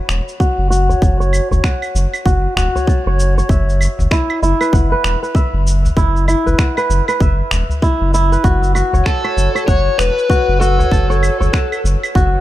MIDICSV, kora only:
0, 0, Header, 1, 2, 480
1, 0, Start_track
1, 0, Key_signature, 3, "minor"
1, 0, Tempo, 618557
1, 792, Time_signature, 4, 2, 24, 8
1, 9628, End_track
2, 0, Start_track
2, 0, Title_t, "Kora"
2, 0, Program_c, 0, 46
2, 0, Note_on_c, 0, 66, 93
2, 0, Note_on_c, 0, 73, 74
2, 0, Note_on_c, 0, 78, 77
2, 242, Note_off_c, 0, 66, 0
2, 310, Note_on_c, 0, 66, 91
2, 543, Note_off_c, 0, 66, 0
2, 546, Note_on_c, 0, 66, 91
2, 575, Note_off_c, 0, 78, 0
2, 619, Note_off_c, 0, 73, 0
2, 694, Note_on_c, 0, 73, 69
2, 791, Note_on_c, 0, 81, 76
2, 930, Note_off_c, 0, 73, 0
2, 933, Note_on_c, 0, 73, 93
2, 1173, Note_off_c, 0, 73, 0
2, 1176, Note_on_c, 0, 73, 75
2, 1273, Note_on_c, 0, 78, 74
2, 1465, Note_off_c, 0, 81, 0
2, 1681, Note_off_c, 0, 66, 0
2, 1751, Note_on_c, 0, 66, 91
2, 1991, Note_off_c, 0, 66, 0
2, 1994, Note_on_c, 0, 66, 90
2, 2022, Note_off_c, 0, 78, 0
2, 2066, Note_off_c, 0, 73, 0
2, 2138, Note_on_c, 0, 73, 69
2, 2238, Note_on_c, 0, 81, 84
2, 2380, Note_off_c, 0, 73, 0
2, 2383, Note_on_c, 0, 73, 93
2, 2619, Note_off_c, 0, 73, 0
2, 2622, Note_on_c, 0, 73, 72
2, 2716, Note_on_c, 0, 76, 77
2, 2912, Note_off_c, 0, 81, 0
2, 3129, Note_off_c, 0, 66, 0
2, 3197, Note_on_c, 0, 64, 91
2, 3432, Note_off_c, 0, 64, 0
2, 3435, Note_on_c, 0, 64, 94
2, 3512, Note_off_c, 0, 73, 0
2, 3518, Note_off_c, 0, 76, 0
2, 3575, Note_on_c, 0, 71, 72
2, 3673, Note_on_c, 0, 78, 79
2, 3813, Note_off_c, 0, 71, 0
2, 3817, Note_on_c, 0, 71, 103
2, 4053, Note_off_c, 0, 71, 0
2, 4056, Note_on_c, 0, 71, 71
2, 4153, Note_on_c, 0, 76, 81
2, 4421, Note_off_c, 0, 78, 0
2, 4630, Note_off_c, 0, 64, 0
2, 4633, Note_on_c, 0, 64, 95
2, 4871, Note_off_c, 0, 64, 0
2, 4874, Note_on_c, 0, 64, 94
2, 4955, Note_off_c, 0, 76, 0
2, 5010, Note_off_c, 0, 71, 0
2, 5016, Note_on_c, 0, 71, 73
2, 5115, Note_on_c, 0, 78, 69
2, 5255, Note_off_c, 0, 71, 0
2, 5258, Note_on_c, 0, 71, 96
2, 5495, Note_off_c, 0, 71, 0
2, 5498, Note_on_c, 0, 71, 74
2, 5598, Note_on_c, 0, 76, 76
2, 5864, Note_off_c, 0, 78, 0
2, 6071, Note_off_c, 0, 64, 0
2, 6074, Note_on_c, 0, 64, 100
2, 6314, Note_off_c, 0, 64, 0
2, 6317, Note_on_c, 0, 64, 96
2, 6400, Note_off_c, 0, 76, 0
2, 6452, Note_off_c, 0, 71, 0
2, 6458, Note_on_c, 0, 71, 68
2, 6551, Note_on_c, 0, 66, 96
2, 6788, Note_off_c, 0, 66, 0
2, 6791, Note_on_c, 0, 66, 94
2, 6935, Note_on_c, 0, 73, 70
2, 7031, Note_on_c, 0, 81, 74
2, 7170, Note_off_c, 0, 73, 0
2, 7173, Note_on_c, 0, 73, 105
2, 7408, Note_off_c, 0, 73, 0
2, 7412, Note_off_c, 0, 71, 0
2, 7412, Note_on_c, 0, 73, 69
2, 7513, Note_on_c, 0, 78, 79
2, 7533, Note_off_c, 0, 64, 0
2, 7706, Note_off_c, 0, 81, 0
2, 7926, Note_off_c, 0, 66, 0
2, 7992, Note_on_c, 0, 66, 96
2, 8229, Note_off_c, 0, 66, 0
2, 8232, Note_on_c, 0, 66, 96
2, 8261, Note_off_c, 0, 78, 0
2, 8302, Note_off_c, 0, 73, 0
2, 8372, Note_on_c, 0, 73, 70
2, 8470, Note_on_c, 0, 81, 84
2, 8609, Note_off_c, 0, 73, 0
2, 8612, Note_on_c, 0, 73, 101
2, 8847, Note_off_c, 0, 73, 0
2, 8850, Note_on_c, 0, 73, 76
2, 8947, Note_on_c, 0, 78, 77
2, 9144, Note_off_c, 0, 81, 0
2, 9367, Note_off_c, 0, 66, 0
2, 9431, Note_on_c, 0, 66, 95
2, 9628, Note_off_c, 0, 66, 0
2, 9628, Note_off_c, 0, 73, 0
2, 9628, Note_off_c, 0, 78, 0
2, 9628, End_track
0, 0, End_of_file